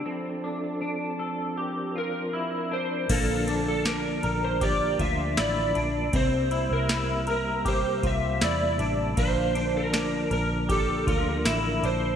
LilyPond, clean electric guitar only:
\new Staff \with { instrumentName = "Clean electric guitar" } { \time 4/4 \key bes \lydian \tempo 4 = 79 c'8 d'8 d'8 a'8 g'8 f'8 e'8 d'8 | bes8 d'8 d'8 bes'8 g'8 f'8 e'8 d'8 | c'8 e'8 e'8 bes'8 g'8 f'8 e'8 d'8 | bes8 d'8 d'8 bes'8 g'8 f'8 e'8 d'8 | }